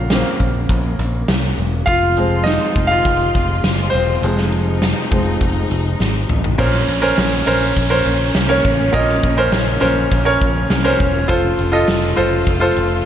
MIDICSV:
0, 0, Header, 1, 6, 480
1, 0, Start_track
1, 0, Key_signature, -5, "minor"
1, 0, Tempo, 588235
1, 1532, Time_signature, 4, 2, 24, 8
1, 10652, End_track
2, 0, Start_track
2, 0, Title_t, "Grand piano"
2, 0, Program_c, 0, 0
2, 0, Control_c, 0, 64, 127
2, 0, Note_on_c, 0, 49, 45
2, 0, Note_on_c, 0, 58, 40
2, 0, Note_on_c, 0, 60, 49
2, 0, Note_on_c, 0, 65, 65
2, 0, Note_on_c, 0, 66, 71
2, 0, Note_on_c, 0, 77, 94
2, 0, Note_on_c, 0, 78, 98
2, 92, Note_off_c, 0, 49, 0
2, 92, Note_on_c, 0, 49, 49
2, 97, Note_off_c, 0, 58, 0
2, 97, Note_on_c, 0, 58, 44
2, 106, Note_off_c, 0, 60, 0
2, 106, Note_on_c, 0, 60, 53
2, 297, Note_off_c, 0, 77, 0
2, 305, Note_off_c, 0, 65, 0
2, 780, Note_off_c, 0, 49, 0
2, 782, Note_off_c, 0, 58, 0
2, 786, Note_off_c, 0, 60, 0
2, 1516, Note_on_c, 0, 77, 98
2, 1539, Note_on_c, 0, 65, 77
2, 1541, Note_off_c, 0, 66, 0
2, 1541, Control_c, 0, 64, 0
2, 1543, Note_off_c, 0, 78, 0
2, 1672, Control_c, 0, 64, 127
2, 1771, Note_on_c, 0, 53, 52
2, 1774, Note_on_c, 0, 56, 43
2, 1780, Note_on_c, 0, 60, 54
2, 1983, Note_off_c, 0, 65, 0
2, 1988, Note_on_c, 0, 75, 84
2, 2014, Note_on_c, 0, 63, 68
2, 2019, Note_off_c, 0, 77, 0
2, 2344, Note_on_c, 0, 77, 94
2, 2348, Note_off_c, 0, 63, 0
2, 2371, Note_off_c, 0, 75, 0
2, 2379, Note_on_c, 0, 65, 72
2, 3182, Note_on_c, 0, 72, 90
2, 3183, Note_off_c, 0, 65, 0
2, 3210, Note_off_c, 0, 60, 0
2, 3222, Note_on_c, 0, 60, 57
2, 3224, Note_off_c, 0, 77, 0
2, 3441, Note_off_c, 0, 53, 0
2, 3448, Note_off_c, 0, 56, 0
2, 3450, Note_off_c, 0, 60, 0
2, 3453, Note_on_c, 0, 53, 51
2, 3460, Note_on_c, 0, 56, 46
2, 3462, Note_on_c, 0, 60, 53
2, 4158, Note_off_c, 0, 53, 0
2, 4159, Note_off_c, 0, 56, 0
2, 4161, Note_off_c, 0, 60, 0
2, 4170, Note_on_c, 0, 53, 46
2, 4171, Note_on_c, 0, 56, 42
2, 4173, Note_on_c, 0, 60, 54
2, 4387, Note_off_c, 0, 53, 0
2, 4388, Note_off_c, 0, 56, 0
2, 4389, Note_off_c, 0, 60, 0
2, 4845, Note_off_c, 0, 72, 0
2, 5370, Note_on_c, 0, 61, 75
2, 5373, Note_on_c, 0, 46, 68
2, 5373, Note_on_c, 0, 70, 72
2, 5373, Note_on_c, 0, 72, 85
2, 5382, Control_c, 0, 64, 0
2, 5540, Control_c, 0, 64, 127
2, 5654, Note_off_c, 0, 61, 0
2, 5655, Note_off_c, 0, 70, 0
2, 5656, Note_off_c, 0, 72, 0
2, 5727, Note_on_c, 0, 61, 85
2, 5727, Note_on_c, 0, 70, 78
2, 5732, Note_on_c, 0, 72, 85
2, 6012, Note_off_c, 0, 61, 0
2, 6012, Note_off_c, 0, 70, 0
2, 6015, Note_off_c, 0, 72, 0
2, 6061, Note_off_c, 0, 46, 0
2, 6089, Note_on_c, 0, 61, 82
2, 6095, Note_on_c, 0, 70, 78
2, 6099, Note_on_c, 0, 72, 88
2, 6374, Note_off_c, 0, 61, 0
2, 6377, Note_off_c, 0, 70, 0
2, 6379, Note_off_c, 0, 72, 0
2, 6447, Note_on_c, 0, 70, 78
2, 6448, Note_on_c, 0, 61, 83
2, 6452, Note_on_c, 0, 72, 92
2, 6826, Note_off_c, 0, 70, 0
2, 6827, Note_off_c, 0, 61, 0
2, 6829, Note_off_c, 0, 72, 0
2, 6926, Note_on_c, 0, 61, 84
2, 6926, Note_on_c, 0, 70, 72
2, 6934, Note_on_c, 0, 73, 89
2, 7212, Note_off_c, 0, 61, 0
2, 7212, Note_off_c, 0, 70, 0
2, 7216, Note_off_c, 0, 73, 0
2, 7282, Note_on_c, 0, 61, 82
2, 7283, Note_on_c, 0, 46, 69
2, 7285, Note_on_c, 0, 70, 77
2, 7292, Note_on_c, 0, 75, 95
2, 7570, Note_off_c, 0, 61, 0
2, 7572, Note_off_c, 0, 70, 0
2, 7575, Note_off_c, 0, 75, 0
2, 7647, Note_on_c, 0, 61, 82
2, 7652, Note_on_c, 0, 70, 74
2, 7652, Note_on_c, 0, 72, 96
2, 7932, Note_off_c, 0, 61, 0
2, 7935, Note_off_c, 0, 70, 0
2, 7935, Note_off_c, 0, 72, 0
2, 7975, Note_off_c, 0, 46, 0
2, 8000, Note_on_c, 0, 61, 89
2, 8004, Note_on_c, 0, 72, 90
2, 8006, Note_on_c, 0, 70, 74
2, 8289, Note_off_c, 0, 61, 0
2, 8291, Note_off_c, 0, 72, 0
2, 8292, Note_off_c, 0, 70, 0
2, 8363, Note_on_c, 0, 61, 83
2, 8366, Note_on_c, 0, 70, 80
2, 8374, Note_on_c, 0, 73, 95
2, 8744, Note_off_c, 0, 61, 0
2, 8746, Note_off_c, 0, 70, 0
2, 8750, Note_off_c, 0, 73, 0
2, 8846, Note_on_c, 0, 61, 83
2, 8847, Note_on_c, 0, 70, 71
2, 8851, Note_on_c, 0, 72, 92
2, 9132, Note_off_c, 0, 61, 0
2, 9133, Note_off_c, 0, 70, 0
2, 9134, Note_off_c, 0, 72, 0
2, 9204, Note_on_c, 0, 65, 85
2, 9206, Note_on_c, 0, 69, 79
2, 9211, Note_on_c, 0, 72, 95
2, 9222, Control_c, 0, 64, 0
2, 9357, Control_c, 0, 64, 127
2, 9491, Note_off_c, 0, 65, 0
2, 9492, Note_off_c, 0, 69, 0
2, 9494, Note_off_c, 0, 72, 0
2, 9563, Note_on_c, 0, 65, 85
2, 9569, Note_on_c, 0, 69, 75
2, 9572, Note_on_c, 0, 75, 92
2, 9850, Note_off_c, 0, 65, 0
2, 9854, Note_off_c, 0, 69, 0
2, 9855, Note_off_c, 0, 75, 0
2, 9926, Note_on_c, 0, 65, 82
2, 9928, Note_on_c, 0, 69, 76
2, 9931, Note_on_c, 0, 72, 95
2, 10212, Note_off_c, 0, 65, 0
2, 10213, Note_off_c, 0, 69, 0
2, 10214, Note_off_c, 0, 72, 0
2, 10283, Note_on_c, 0, 65, 84
2, 10290, Note_on_c, 0, 69, 76
2, 10292, Note_on_c, 0, 72, 91
2, 10652, Note_off_c, 0, 65, 0
2, 10652, Note_off_c, 0, 69, 0
2, 10652, Note_off_c, 0, 72, 0
2, 10652, End_track
3, 0, Start_track
3, 0, Title_t, "String section"
3, 0, Program_c, 1, 48
3, 0, Note_on_c, 1, 49, 65
3, 0, Note_on_c, 1, 58, 58
3, 1500, Note_off_c, 1, 49, 0
3, 1502, Note_off_c, 1, 58, 0
3, 1533, Note_on_c, 1, 48, 66
3, 1534, Note_on_c, 1, 56, 63
3, 1535, Note_on_c, 1, 65, 74
3, 1538, Note_on_c, 1, 53, 62
3, 3435, Note_off_c, 1, 65, 0
3, 3457, Note_on_c, 1, 63, 79
3, 5341, Note_off_c, 1, 48, 0
3, 5342, Note_off_c, 1, 56, 0
3, 5343, Note_off_c, 1, 53, 0
3, 5356, Note_off_c, 1, 63, 0
3, 5382, Note_on_c, 1, 53, 66
3, 5383, Note_on_c, 1, 61, 82
3, 5384, Note_on_c, 1, 58, 68
3, 5388, Note_on_c, 1, 49, 69
3, 9186, Note_off_c, 1, 58, 0
3, 9186, Note_off_c, 1, 61, 0
3, 9222, Note_on_c, 1, 65, 80
3, 9226, Note_on_c, 1, 57, 67
3, 10652, Note_off_c, 1, 49, 0
3, 10652, Note_off_c, 1, 53, 0
3, 10652, Note_off_c, 1, 57, 0
3, 10652, Note_off_c, 1, 65, 0
3, 10652, End_track
4, 0, Start_track
4, 0, Title_t, "Picked electric bass"
4, 0, Program_c, 2, 34
4, 0, Note_on_c, 2, 34, 92
4, 179, Note_off_c, 2, 34, 0
4, 328, Note_on_c, 2, 34, 88
4, 526, Note_off_c, 2, 34, 0
4, 565, Note_on_c, 2, 34, 96
4, 765, Note_off_c, 2, 34, 0
4, 808, Note_on_c, 2, 34, 93
4, 1006, Note_off_c, 2, 34, 0
4, 1049, Note_on_c, 2, 36, 91
4, 1247, Note_off_c, 2, 36, 0
4, 1288, Note_on_c, 2, 28, 76
4, 1486, Note_off_c, 2, 28, 0
4, 1529, Note_on_c, 2, 29, 91
4, 2101, Note_off_c, 2, 29, 0
4, 2250, Note_on_c, 2, 29, 91
4, 2448, Note_off_c, 2, 29, 0
4, 2493, Note_on_c, 2, 29, 96
4, 2690, Note_off_c, 2, 29, 0
4, 2737, Note_on_c, 2, 29, 89
4, 2932, Note_off_c, 2, 29, 0
4, 2965, Note_on_c, 2, 30, 84
4, 3165, Note_off_c, 2, 30, 0
4, 3208, Note_on_c, 2, 28, 73
4, 3407, Note_off_c, 2, 28, 0
4, 3447, Note_on_c, 2, 29, 103
4, 4020, Note_off_c, 2, 29, 0
4, 4177, Note_on_c, 2, 29, 85
4, 4372, Note_off_c, 2, 29, 0
4, 4416, Note_on_c, 2, 29, 101
4, 4612, Note_off_c, 2, 29, 0
4, 4651, Note_on_c, 2, 29, 92
4, 4849, Note_off_c, 2, 29, 0
4, 4900, Note_on_c, 2, 32, 84
4, 5094, Note_off_c, 2, 32, 0
4, 5141, Note_on_c, 2, 33, 78
4, 5335, Note_off_c, 2, 33, 0
4, 5378, Note_on_c, 2, 34, 92
4, 5573, Note_off_c, 2, 34, 0
4, 5613, Note_on_c, 2, 34, 91
4, 5810, Note_off_c, 2, 34, 0
4, 5859, Note_on_c, 2, 34, 90
4, 6053, Note_off_c, 2, 34, 0
4, 6098, Note_on_c, 2, 34, 85
4, 6293, Note_off_c, 2, 34, 0
4, 6340, Note_on_c, 2, 34, 100
4, 6534, Note_off_c, 2, 34, 0
4, 6576, Note_on_c, 2, 34, 86
4, 6772, Note_off_c, 2, 34, 0
4, 6813, Note_on_c, 2, 36, 86
4, 7010, Note_off_c, 2, 36, 0
4, 7057, Note_on_c, 2, 33, 87
4, 7252, Note_off_c, 2, 33, 0
4, 7295, Note_on_c, 2, 34, 95
4, 7491, Note_off_c, 2, 34, 0
4, 7539, Note_on_c, 2, 34, 89
4, 7733, Note_off_c, 2, 34, 0
4, 7765, Note_on_c, 2, 34, 93
4, 7965, Note_off_c, 2, 34, 0
4, 8012, Note_on_c, 2, 34, 97
4, 8210, Note_off_c, 2, 34, 0
4, 8255, Note_on_c, 2, 34, 104
4, 8451, Note_off_c, 2, 34, 0
4, 8497, Note_on_c, 2, 34, 94
4, 8692, Note_off_c, 2, 34, 0
4, 8732, Note_on_c, 2, 36, 94
4, 8929, Note_off_c, 2, 36, 0
4, 8976, Note_on_c, 2, 28, 84
4, 9172, Note_off_c, 2, 28, 0
4, 9214, Note_on_c, 2, 29, 104
4, 9411, Note_off_c, 2, 29, 0
4, 9458, Note_on_c, 2, 29, 86
4, 9653, Note_off_c, 2, 29, 0
4, 9694, Note_on_c, 2, 29, 91
4, 9891, Note_off_c, 2, 29, 0
4, 9940, Note_on_c, 2, 29, 94
4, 10134, Note_off_c, 2, 29, 0
4, 10173, Note_on_c, 2, 29, 95
4, 10370, Note_off_c, 2, 29, 0
4, 10419, Note_on_c, 2, 29, 90
4, 10614, Note_off_c, 2, 29, 0
4, 10652, End_track
5, 0, Start_track
5, 0, Title_t, "Downlifter"
5, 0, Program_c, 3, 103
5, 5375, Note_on_c, 3, 60, 77
5, 9214, Note_off_c, 3, 60, 0
5, 10652, End_track
6, 0, Start_track
6, 0, Title_t, "Drums"
6, 83, Note_on_c, 9, 38, 85
6, 87, Note_on_c, 9, 42, 74
6, 165, Note_off_c, 9, 38, 0
6, 169, Note_off_c, 9, 42, 0
6, 328, Note_on_c, 9, 36, 69
6, 329, Note_on_c, 9, 42, 65
6, 410, Note_off_c, 9, 36, 0
6, 411, Note_off_c, 9, 42, 0
6, 563, Note_on_c, 9, 42, 77
6, 566, Note_on_c, 9, 36, 80
6, 645, Note_off_c, 9, 42, 0
6, 647, Note_off_c, 9, 36, 0
6, 809, Note_on_c, 9, 42, 74
6, 890, Note_off_c, 9, 42, 0
6, 1047, Note_on_c, 9, 38, 96
6, 1047, Note_on_c, 9, 42, 82
6, 1128, Note_off_c, 9, 42, 0
6, 1129, Note_off_c, 9, 38, 0
6, 1292, Note_on_c, 9, 42, 65
6, 1374, Note_off_c, 9, 42, 0
6, 1528, Note_on_c, 9, 36, 98
6, 1532, Note_on_c, 9, 42, 75
6, 1610, Note_off_c, 9, 36, 0
6, 1613, Note_off_c, 9, 42, 0
6, 1769, Note_on_c, 9, 42, 69
6, 1850, Note_off_c, 9, 42, 0
6, 2009, Note_on_c, 9, 38, 84
6, 2013, Note_on_c, 9, 42, 77
6, 2090, Note_off_c, 9, 38, 0
6, 2094, Note_off_c, 9, 42, 0
6, 2251, Note_on_c, 9, 36, 77
6, 2251, Note_on_c, 9, 42, 65
6, 2332, Note_off_c, 9, 36, 0
6, 2333, Note_off_c, 9, 42, 0
6, 2490, Note_on_c, 9, 36, 76
6, 2493, Note_on_c, 9, 42, 71
6, 2572, Note_off_c, 9, 36, 0
6, 2574, Note_off_c, 9, 42, 0
6, 2734, Note_on_c, 9, 36, 81
6, 2736, Note_on_c, 9, 42, 75
6, 2815, Note_off_c, 9, 36, 0
6, 2818, Note_off_c, 9, 42, 0
6, 2969, Note_on_c, 9, 42, 88
6, 2970, Note_on_c, 9, 38, 95
6, 3050, Note_off_c, 9, 42, 0
6, 3051, Note_off_c, 9, 38, 0
6, 3215, Note_on_c, 9, 46, 64
6, 3296, Note_off_c, 9, 46, 0
6, 3452, Note_on_c, 9, 42, 71
6, 3534, Note_off_c, 9, 42, 0
6, 3572, Note_on_c, 9, 38, 33
6, 3653, Note_off_c, 9, 38, 0
6, 3690, Note_on_c, 9, 42, 64
6, 3771, Note_off_c, 9, 42, 0
6, 3933, Note_on_c, 9, 38, 88
6, 3937, Note_on_c, 9, 42, 81
6, 4014, Note_off_c, 9, 38, 0
6, 4018, Note_off_c, 9, 42, 0
6, 4176, Note_on_c, 9, 36, 78
6, 4176, Note_on_c, 9, 42, 65
6, 4258, Note_off_c, 9, 36, 0
6, 4258, Note_off_c, 9, 42, 0
6, 4415, Note_on_c, 9, 36, 81
6, 4415, Note_on_c, 9, 42, 80
6, 4497, Note_off_c, 9, 36, 0
6, 4497, Note_off_c, 9, 42, 0
6, 4658, Note_on_c, 9, 42, 79
6, 4740, Note_off_c, 9, 42, 0
6, 4898, Note_on_c, 9, 38, 51
6, 4980, Note_off_c, 9, 38, 0
6, 5136, Note_on_c, 9, 45, 76
6, 5218, Note_off_c, 9, 45, 0
6, 5257, Note_on_c, 9, 43, 76
6, 5339, Note_off_c, 9, 43, 0
6, 5378, Note_on_c, 9, 36, 107
6, 5379, Note_on_c, 9, 49, 87
6, 5459, Note_off_c, 9, 36, 0
6, 5460, Note_off_c, 9, 49, 0
6, 5500, Note_on_c, 9, 38, 36
6, 5581, Note_off_c, 9, 38, 0
6, 5611, Note_on_c, 9, 54, 47
6, 5616, Note_on_c, 9, 42, 70
6, 5692, Note_off_c, 9, 54, 0
6, 5698, Note_off_c, 9, 42, 0
6, 5850, Note_on_c, 9, 54, 96
6, 5857, Note_on_c, 9, 38, 93
6, 5861, Note_on_c, 9, 42, 88
6, 5931, Note_off_c, 9, 54, 0
6, 5939, Note_off_c, 9, 38, 0
6, 5943, Note_off_c, 9, 42, 0
6, 6097, Note_on_c, 9, 54, 48
6, 6100, Note_on_c, 9, 42, 70
6, 6179, Note_off_c, 9, 54, 0
6, 6181, Note_off_c, 9, 42, 0
6, 6330, Note_on_c, 9, 54, 56
6, 6336, Note_on_c, 9, 42, 79
6, 6337, Note_on_c, 9, 36, 89
6, 6412, Note_off_c, 9, 54, 0
6, 6418, Note_off_c, 9, 42, 0
6, 6419, Note_off_c, 9, 36, 0
6, 6574, Note_on_c, 9, 54, 49
6, 6580, Note_on_c, 9, 42, 80
6, 6656, Note_off_c, 9, 54, 0
6, 6661, Note_off_c, 9, 42, 0
6, 6811, Note_on_c, 9, 38, 99
6, 6811, Note_on_c, 9, 42, 86
6, 6811, Note_on_c, 9, 54, 81
6, 6892, Note_off_c, 9, 42, 0
6, 6892, Note_off_c, 9, 54, 0
6, 6893, Note_off_c, 9, 38, 0
6, 7056, Note_on_c, 9, 54, 29
6, 7057, Note_on_c, 9, 36, 90
6, 7059, Note_on_c, 9, 46, 73
6, 7138, Note_off_c, 9, 54, 0
6, 7139, Note_off_c, 9, 36, 0
6, 7141, Note_off_c, 9, 46, 0
6, 7291, Note_on_c, 9, 42, 74
6, 7294, Note_on_c, 9, 36, 103
6, 7372, Note_off_c, 9, 42, 0
6, 7376, Note_off_c, 9, 36, 0
6, 7415, Note_on_c, 9, 38, 37
6, 7496, Note_off_c, 9, 38, 0
6, 7524, Note_on_c, 9, 54, 48
6, 7532, Note_on_c, 9, 42, 69
6, 7536, Note_on_c, 9, 36, 87
6, 7605, Note_off_c, 9, 54, 0
6, 7614, Note_off_c, 9, 42, 0
6, 7617, Note_off_c, 9, 36, 0
6, 7765, Note_on_c, 9, 54, 95
6, 7771, Note_on_c, 9, 38, 92
6, 7775, Note_on_c, 9, 42, 86
6, 7847, Note_off_c, 9, 54, 0
6, 7853, Note_off_c, 9, 38, 0
6, 7857, Note_off_c, 9, 42, 0
6, 8004, Note_on_c, 9, 54, 45
6, 8017, Note_on_c, 9, 42, 69
6, 8085, Note_off_c, 9, 54, 0
6, 8098, Note_off_c, 9, 42, 0
6, 8242, Note_on_c, 9, 54, 56
6, 8255, Note_on_c, 9, 36, 85
6, 8257, Note_on_c, 9, 42, 84
6, 8323, Note_off_c, 9, 54, 0
6, 8337, Note_off_c, 9, 36, 0
6, 8339, Note_off_c, 9, 42, 0
6, 8492, Note_on_c, 9, 54, 49
6, 8499, Note_on_c, 9, 36, 97
6, 8499, Note_on_c, 9, 42, 76
6, 8574, Note_off_c, 9, 54, 0
6, 8580, Note_off_c, 9, 36, 0
6, 8581, Note_off_c, 9, 42, 0
6, 8732, Note_on_c, 9, 42, 91
6, 8733, Note_on_c, 9, 38, 103
6, 8740, Note_on_c, 9, 54, 77
6, 8814, Note_off_c, 9, 42, 0
6, 8815, Note_off_c, 9, 38, 0
6, 8821, Note_off_c, 9, 54, 0
6, 8977, Note_on_c, 9, 36, 82
6, 8979, Note_on_c, 9, 46, 74
6, 9059, Note_off_c, 9, 36, 0
6, 9061, Note_off_c, 9, 46, 0
6, 9214, Note_on_c, 9, 42, 78
6, 9215, Note_on_c, 9, 36, 105
6, 9296, Note_off_c, 9, 36, 0
6, 9296, Note_off_c, 9, 42, 0
6, 9449, Note_on_c, 9, 54, 51
6, 9455, Note_on_c, 9, 42, 73
6, 9531, Note_off_c, 9, 54, 0
6, 9536, Note_off_c, 9, 42, 0
6, 9689, Note_on_c, 9, 54, 88
6, 9694, Note_on_c, 9, 38, 98
6, 9698, Note_on_c, 9, 42, 92
6, 9771, Note_off_c, 9, 54, 0
6, 9776, Note_off_c, 9, 38, 0
6, 9780, Note_off_c, 9, 42, 0
6, 9929, Note_on_c, 9, 54, 47
6, 9938, Note_on_c, 9, 42, 70
6, 10011, Note_off_c, 9, 54, 0
6, 10020, Note_off_c, 9, 42, 0
6, 10172, Note_on_c, 9, 54, 56
6, 10175, Note_on_c, 9, 36, 86
6, 10175, Note_on_c, 9, 42, 78
6, 10254, Note_off_c, 9, 54, 0
6, 10256, Note_off_c, 9, 36, 0
6, 10257, Note_off_c, 9, 42, 0
6, 10416, Note_on_c, 9, 42, 80
6, 10416, Note_on_c, 9, 54, 48
6, 10497, Note_off_c, 9, 54, 0
6, 10498, Note_off_c, 9, 42, 0
6, 10652, End_track
0, 0, End_of_file